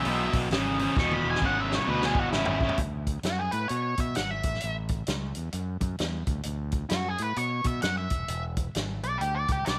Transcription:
Already playing: E5
0.05 B1 E2 B2, open hi-hat
0.33 B1, kick, open hi-hat
0.50 G#1 E2 C#3, snare, open hi-hat
0.79 E2 C#3, open hi-hat
0.97 E1 E2 B2 C#6, kick, snare
1.11 B5, high tom
1.25 E1
1.30 G#5
1.35 snare
1.41 G#1 E2 C#3, kick
1.46 F#5
1.60 E5
1.69 E2 C#3, snare
1.75 C#5, mid tom
1.86 D2 E2 B2 B4
2.02 G#4, snare
2.15 G#1, kick
2.19 F#4
2.31 G#1 E2 C#3 E4, snare
2.45 floor tom
2.60 E2 C#3, kick
2.69 floor tom
2.77 D2, kick, closed hi-hat
3.07 kick, closed hi-hat
3.23 F#2 F#4, snare, closed hi-hat
3.39 G#4
3.51 A2 B4, closed hi-hat
3.68 B2 C#5, closed hi-hat
3.97 B2 E5, kick, closed hi-hat
4.15 G#1 F#5, snare, closed hi-hat
4.31 E5
4.43 A1, kick, closed hi-hat
4.54 snare
4.60 A1, closed hi-hat
4.88 kick, closed hi-hat
5.07 C#2, snare, closed hi-hat
5.35 E2, closed hi-hat
5.52 F#2, closed hi-hat
5.81 F#2, kick, closed hi-hat
5.98 E2, snare, closed hi-hat
6.27 D2, kick, closed hi-hat
6.43 D2, closed hi-hat
6.72 kick, closed hi-hat
6.89 F#2 F#4, snare, closed hi-hat
7.08 G#4
7.18 A2, closed hi-hat
7.22 B4
7.36 B2 C#5, closed hi-hat
7.64 B2 E5, kick, closed hi-hat
7.82 F#2 F#5, snare, closed hi-hat
7.97 E5
8.10 E1, kick, closed hi-hat
8.28 E1, closed hi-hat
8.57 kick, closed hi-hat
8.75 G#1, snare, closed hi-hat
9.03 B1 D5, closed hi-hat
9.18 D2 G4, closed hi-hat
9.35 D5
9.48 C#2 G4, kick, closed hi-hat
9.65 B1 D5, snare, closed hi-hat

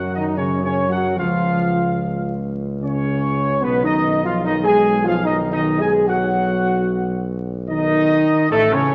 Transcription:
Already playing: F#2 F#3 F#4 F#5
0.15 D#3 D#4 D#5
0.37 C#3 C#4 C#5
0.63 C#3 C#4 C#5
0.90 F#3 F#4 F#5
1.16 C#2 F3 F4 F5
2.81 C#3 C#4 C#5
3.62 B1 B2 B3 B4
3.84 D#3 D#4 D#5
4.24 F3 F4 F5
4.44 D#3 D#4 D#5
4.63 G#3 G#4 G#5
5.04 F3 F4 F5
5.24 D#4 D#5
5.28 D#3
5.51 D#3 D#4 D#5
5.80 G#3 G#4 G#5
6.06 F#3 F#4 F#5
7.69 D#3 D#4 D#5
8.50 A1 A2 A3 A4
8.72 C#3 C#4 C#5

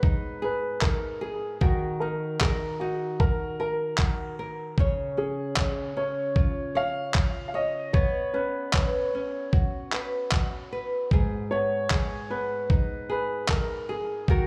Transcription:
Already playing: G#2 B3 G#4 B4
0.03 D#4, kick
0.42 G#4 B4
0.81 D#4 A#4, kick, clap
1.21 G#4
1.61 D#3 F#4 A#4, kick
2.00 D#4 A#4
2.41 G#4 A#4, kick, clap
2.80 D#4 F#4
3.20 F#4 A#4, kick
3.60 A#4
3.98 F#4, kick, clap
4.39 A#4
4.78 C#3 C#5, kick
5.17 C#4 G#4
5.57 C#5, kick, clap
5.97 C#4 C#5
6.36 F4, kick
6.75 C#5 F5
7.14 F4, kick, clap
7.48 F5
7.54 C#5 D#5
7.93 B3 B4 C#5, kick
8.34 C#4 B4
8.73 B4 C#5, kick, clap
9.15 C#4
9.53 F#4, kick
9.93 B4, clap
10.32 F#4, kick, clap
10.72 B4
11.11 G#2 G#4, kick
11.51 B3 C#5
11.90 G#4, kick, clap
12.30 B3 B4
12.70 D#4, kick
13.10 G#4 B4
13.49 D#4 A#4, kick, clap
13.89 G#4
14.28 D#3 F#4 A#4, kick

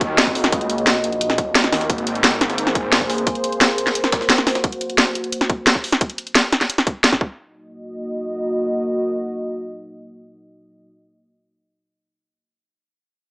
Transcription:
Already playing: D#2 A#3 F#4 D#5
0.01 kick, closed hi-hat
0.18 F1, snare, closed hi-hat
0.27 kick, snare
0.35 snare, closed hi-hat, open hi-hat
0.44 snare, closed hi-hat
0.52 C#2, kick, closed hi-hat
0.61 closed hi-hat
0.70 closed hi-hat
0.78 closed hi-hat
0.87 snare, closed hi-hat
0.95 snare
1.04 A#1, closed hi-hat
1.12 closed hi-hat
1.21 closed hi-hat
1.30 snare
1.38 D#1, kick, closed hi-hat
1.55 snare, closed hi-hat
1.64 snare
1.72 D#2, snare, closed hi-hat, open hi-hat
1.81 snare, closed hi-hat
1.90 G#1 A#3 G#4 C5, kick, closed hi-hat
1.98 closed hi-hat
2.07 closed hi-hat
2.15 closed hi-hat
2.24 G#1, snare, closed hi-hat
2.41 G#1, snare, closed hi-hat
2.50 snare, closed hi-hat
2.58 closed hi-hat
2.67 snare
2.75 kick, closed hi-hat
2.92 A#1, snare, closed hi-hat
3.01 kick, snare
3.10 snare, closed hi-hat, open hi-hat
3.18 closed hi-hat
3.27 kick, closed hi-hat
3.35 closed hi-hat
3.44 closed hi-hat
3.52 closed hi-hat
3.61 snare, closed hi-hat
3.70 snare
3.78 closed hi-hat
3.87 snare, closed hi-hat
3.95 F#4, closed hi-hat
4.04 snare
4.12 kick, snare, closed hi-hat
4.21 snare
4.30 snare, closed hi-hat
4.38 snare
4.47 snare, closed hi-hat, open hi-hat
4.55 snare, closed hi-hat
4.64 kick, closed hi-hat
4.72 closed hi-hat
4.81 closed hi-hat
4.90 closed hi-hat
4.98 snare, closed hi-hat
5.15 closed hi-hat
5.24 closed hi-hat
5.32 closed hi-hat
5.41 snare
5.50 kick, closed hi-hat
5.67 snare, closed hi-hat
5.75 kick
5.84 open hi-hat
5.92 snare, closed hi-hat
6.01 kick, closed hi-hat
6.10 closed hi-hat
6.18 closed hi-hat
6.27 closed hi-hat
6.35 snare, closed hi-hat
6.52 snare, closed hi-hat
6.61 snare, closed hi-hat
6.70 closed hi-hat
6.78 snare
6.87 kick, closed hi-hat
7.04 snare, closed hi-hat
7.12 kick, snare
7.21 A#3 F#4 D#5, kick

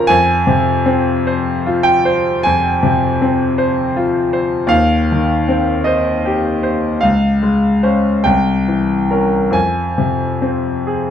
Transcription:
Already playing: C#3 C#4 F4 A#4 A#5
0.07 F2 G#5
0.47 C3
0.86 C4
1.27 C5
1.66 F4
1.83 G5
2.05 C5
2.43 F2 G#5
2.83 C3
3.22 C4
3.58 C5
3.96 F4
4.33 C5
4.67 D#2 F5
5.12 D#3
5.48 C4
5.84 C5 D#5
6.25 G4
6.63 C5
7.01 C#2 F5
7.43 G#3
7.83 C#4 C5
8.24 C2 G5
8.68 E3
9.11 C#4 A#4
9.50 F2 G#5
9.98 C3
10.42 C4
10.87 G#4

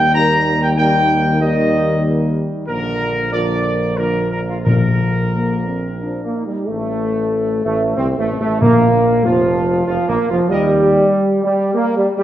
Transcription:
Already playing: D#2 D#3 G3 A#3 A#4 G5
0.14 D#3 G3 A#3 A#4 A#5
0.63 G5
0.77 D#3 G3 A#3 A#4 G5
1.41 D#3 G3 A#3 A#4 D#5
2.68 A#1 D3 F3 A#3 A#4
3.32 D3 F3 A#3 A#4 D5
3.97 D3 F3 A#3 A#4
4.32 A#4
4.49 F4
4.65 A#2 D3 F3 A#3 A#4
5.35 A#3
5.68 C4
6.01 F3 D4
6.24 A#3
6.35 D#4
6.47 G3
6.67 A1 A3
7.65 A1 A3
7.96 C2 C4
8.19 A1 A3
8.40 A1 A3
8.61 A#1 A#2 A#3
9.24 F1 F3 F4
9.87 F1 F3 F4
10.08 A#1 A#3
10.29 F1 F3 F4
10.49 D#2 G3 A#4 D#5
11.44 G3
11.74 A#3
11.97 G3
12.18 G3

